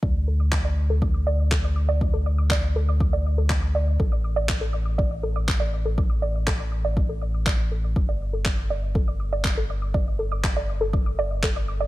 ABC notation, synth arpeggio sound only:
X:1
M:4/4
L:1/16
Q:1/4=121
K:Aphr
V:1 name="Synth arpeggio sound"
d z A d' d' d z A d' d' d z A d' d' d | z A d' d' d z A d' d' d z A d' d' d z | A d' d' d z A d' d' d z A d' d' d z A | d' d' d z A d' d' d z A d' d' d z A d' |
d' d z A d' d' d z A d' d' d z A d' d' | d z A d' d' d z A d' d' d z A d' d' d |]